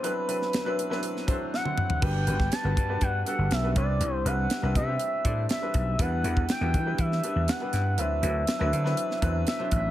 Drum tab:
CC |----------------|x---------------|----------------|----------------|
HH |x-x-x-x-x-x-----|--x-x-x-x-x-x-x-|x-x-x-x-x-x-x-x-|x-x-x-x-x-x-x-x-|
SD |---oo--o-o--o---|---oo-------o---|----o-------o---|----o----o--o-o-|
T1 |-------------o--|----------------|----------------|----------------|
T2 |--------------o-|----------------|----------------|----------------|
FT |---------------o|----------------|----------------|----------------|
BD |----------o-----|o--o--o-o-----o-|------o---o---o-|o--o--o-o-------|

CC |----------------|
HH |x-x-x-x-x-x-x-x-|
SD |----o--o-o--o---|
T1 |----------------|
T2 |----------------|
FT |----------------|
BD |----------o---o-|